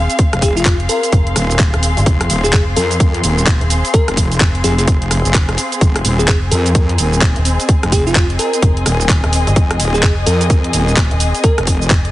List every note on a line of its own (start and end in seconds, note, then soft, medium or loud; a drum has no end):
0.00 12.11 C4 medium
0.00 12.11 G#4 medium
0.00 6.75 F5 medium
0.00 6.27 C6 medium
0.10 closed hi-hat soft
0.10 cabasa soft
0.19 kick loud
0.19 closed hi-hat medium
0.19 cabasa soft
0.33 0.64 F1 loud
0.33 cross-stick medium
0.33 closed hi-hat medium
0.42 0.54 G#4 medium
0.42 kick medium
0.42 open hi-hat loud
0.42 cabasa medium
0.56 0.76 F4 medium
0.56 cabasa soft
0.65 0.88 F1 loud
0.65 kick loud
0.65 clap loud
0.65 closed hi-hat medium
0.65 cabasa soft
0.80 closed hi-hat soft
0.89 1.56 A#4 medium
0.89 open hi-hat medium
0.89 cabasa medium
1.03 closed hi-hat medium
1.03 cabasa soft
1.12 1.35 F1 loud
1.12 kick loud
1.12 closed hi-hat medium
1.12 cabasa soft
1.27 closed hi-hat soft
1.36 1.71 D#1 loud
1.36 cross-stick medium
1.36 open hi-hat loud
1.36 cabasa medium
1.51 cabasa soft
1.59 kick loud
1.59 clap loud
1.59 closed hi-hat medium
1.59 cabasa soft
1.74 1.95 D#1 loud
1.74 cross-stick medium
1.74 closed hi-hat soft
1.83 open hi-hat medium
1.83 cabasa medium
1.97 2.05 G1 loud
1.97 closed hi-hat soft
1.97 cabasa soft
2.06 2.28 F1 medium
2.06 kick loud
2.06 closed hi-hat medium
2.06 cabasa soft
2.21 cross-stick medium
2.21 closed hi-hat medium
2.30 2.52 D#1 loud
2.30 open hi-hat loud
2.30 cabasa medium
2.44 2.64 G#4 medium
2.44 cabasa soft
2.53 2.75 F1 loud
2.53 kick loud
2.53 clap loud
2.53 closed hi-hat medium
2.53 cabasa soft
2.76 3.22 F2 loud
2.76 3.43 A#4 medium
2.76 open hi-hat medium
2.76 cabasa medium
2.91 closed hi-hat medium
2.91 cabasa soft
3.00 kick loud
3.00 closed hi-hat medium
3.00 cabasa soft
3.14 closed hi-hat soft
3.23 3.59 D#1 loud
3.23 open hi-hat loud
3.23 cabasa medium
3.38 cabasa soft
3.47 kick loud
3.47 clap loud
3.47 closed hi-hat medium
3.47 cabasa soft
3.61 3.82 D#1 medium
3.61 closed hi-hat soft
3.70 open hi-hat medium
3.70 cabasa medium
3.85 closed hi-hat soft
3.85 cabasa soft
3.94 4.15 A#4 medium
3.94 kick loud
3.94 closed hi-hat medium
3.94 cabasa soft
4.08 4.39 F1 medium
4.08 cross-stick medium
4.08 closed hi-hat medium
4.17 kick medium
4.17 open hi-hat loud
4.17 cabasa medium
4.32 closed hi-hat soft
4.32 cabasa soft
4.40 4.63 F1 loud
4.40 kick loud
4.40 clap loud
4.40 closed hi-hat medium
4.40 cabasa soft
4.55 closed hi-hat soft
4.64 4.86 F1 medium
4.64 4.73 G#4 medium
4.64 open hi-hat medium
4.64 cabasa medium
4.78 4.84 G#4 medium
4.78 closed hi-hat medium
4.78 cabasa soft
4.88 5.23 F1 loud
4.88 kick loud
4.88 closed hi-hat medium
4.88 cabasa soft
5.02 closed hi-hat soft
5.11 cross-stick medium
5.11 open hi-hat loud
5.11 cabasa medium
5.25 5.56 F1 loud
5.25 closed hi-hat soft
5.25 cabasa soft
5.34 kick loud
5.34 clap loud
5.34 closed hi-hat medium
5.34 cabasa soft
5.49 cross-stick medium
5.49 closed hi-hat soft
5.58 open hi-hat medium
5.58 cabasa medium
5.72 closed hi-hat soft
5.72 cabasa soft
5.81 6.03 F1 medium
5.81 kick loud
5.81 closed hi-hat medium
5.81 cabasa soft
5.96 cross-stick medium
5.96 closed hi-hat medium
6.05 6.27 D#1 loud
6.05 open hi-hat loud
6.05 cabasa medium
6.19 6.39 G#4 medium
6.19 cabasa soft
6.25 6.50 F1 loud
6.25 12.11 G#5 medium
6.25 kick loud
6.25 clap loud
6.25 closed hi-hat medium
6.25 cabasa soft
6.51 6.97 F2 medium
6.51 7.18 A#4 medium
6.51 open hi-hat medium
6.51 cabasa medium
6.63 12.11 D#5 medium
6.63 closed hi-hat medium
6.63 cabasa soft
6.75 kick loud
6.75 closed hi-hat medium
6.75 cabasa soft
6.89 closed hi-hat soft
6.98 7.34 D#1 medium
6.98 open hi-hat loud
6.98 cabasa medium
7.13 cabasa soft
7.22 kick loud
7.22 clap loud
7.22 closed hi-hat medium
7.22 cabasa soft
7.36 7.57 D#1 medium
7.36 closed hi-hat soft
7.45 open hi-hat medium
7.45 cabasa medium
7.60 closed hi-hat soft
7.60 cabasa soft
7.69 kick loud
7.69 closed hi-hat medium
7.69 cabasa soft
7.83 8.14 F1 medium
7.83 cross-stick medium
7.83 closed hi-hat medium
7.92 8.04 G#4 medium
7.92 kick medium
7.92 open hi-hat loud
7.92 cabasa medium
8.07 8.26 F4 medium
8.07 cabasa soft
8.15 8.38 F1 medium
8.15 kick loud
8.15 clap loud
8.15 closed hi-hat medium
8.15 cabasa soft
8.30 closed hi-hat soft
8.39 9.06 A#4 medium
8.39 open hi-hat medium
8.39 cabasa medium
8.53 closed hi-hat medium
8.53 cabasa soft
8.62 8.84 F1 loud
8.62 kick loud
8.62 closed hi-hat medium
8.62 cabasa soft
8.77 closed hi-hat soft
8.86 9.21 D#1 loud
8.86 cross-stick medium
8.86 open hi-hat loud
8.86 cabasa medium
9.01 cabasa soft
9.09 kick loud
9.09 clap loud
9.09 closed hi-hat medium
9.09 cabasa soft
9.24 9.45 D#1 loud
9.24 cross-stick medium
9.24 closed hi-hat soft
9.33 open hi-hat loud
9.33 cabasa medium
9.47 9.55 G1 loud
9.47 closed hi-hat soft
9.47 cabasa soft
9.56 9.78 F1 medium
9.56 kick loud
9.56 closed hi-hat medium
9.56 cabasa soft
9.71 cross-stick medium
9.71 closed hi-hat soft
9.80 10.02 D#1 loud
9.80 open hi-hat loud
9.80 cabasa medium
9.94 10.14 G#4 medium
9.94 cabasa soft
10.03 10.25 F1 medium
10.03 kick loud
10.03 clap loud
10.03 closed hi-hat medium
10.03 cabasa soft
10.26 10.72 F2 medium
10.26 10.93 A#4 medium
10.26 open hi-hat loud
10.26 cabasa medium
10.41 closed hi-hat medium
10.41 cabasa soft
10.50 kick loud
10.50 closed hi-hat medium
10.50 cabasa soft
10.64 closed hi-hat soft
10.73 11.09 D#1 loud
10.73 open hi-hat loud
10.73 cabasa medium
10.88 cabasa soft
10.97 kick loud
10.97 clap loud
10.97 closed hi-hat medium
10.97 cabasa soft
11.11 11.32 D#1 medium
11.11 closed hi-hat soft
11.20 open hi-hat loud
11.20 cabasa medium
11.35 closed hi-hat soft
11.35 cabasa soft
11.44 11.65 A#4 medium
11.44 kick loud
11.44 closed hi-hat medium
11.44 cabasa soft
11.58 11.89 F1 loud
11.58 cross-stick medium
11.58 closed hi-hat soft
11.67 kick medium
11.67 open hi-hat loud
11.67 cabasa medium
11.82 cabasa soft
11.90 12.11 F1 medium
11.90 kick loud
11.90 clap loud
11.90 closed hi-hat medium
11.90 cabasa soft
12.05 closed hi-hat soft